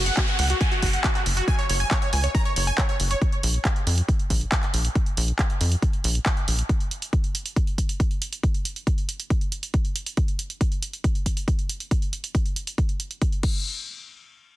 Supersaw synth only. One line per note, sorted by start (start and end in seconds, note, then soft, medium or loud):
0.06 0.13 F#5 medium
0.17 0.24 F#4 medium
0.28 0.35 F#4 medium
0.39 0.46 F#5 medium
0.50 0.57 F#4 medium
0.61 0.68 G#5 medium
0.72 0.79 F#4 medium
0.83 0.90 F#4 medium
0.93 1.00 F#5 medium
1.04 1.11 F#4 medium
1.15 1.22 F#4 medium
1.37 1.44 F#4 medium
1.48 1.55 G#5 loud
1.59 1.66 C#5 medium
1.69 1.76 C#5 medium
1.80 1.87 G#5 medium
1.91 1.98 C#5 medium
2.02 2.09 C#5 medium
2.13 2.20 G#5 medium
2.24 2.31 C#5 medium
2.35 2.42 A#5 medium
2.45 2.52 C#5 medium
2.56 2.63 C#5 medium
2.67 2.74 G#5 medium
2.78 2.85 C#5 medium
2.89 2.96 C#5 medium
3.11 3.18 C#5 medium